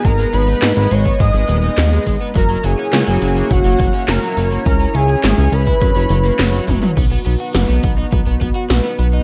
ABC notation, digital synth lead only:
X:1
M:4/4
L:1/16
Q:1/4=104
K:B
V:1 name="Digital synth lead"
a2 b4 c'2 d'6 z2 | a2 g6 f4 a3 z | a2 g2 g2 b8 z2 | z16 |]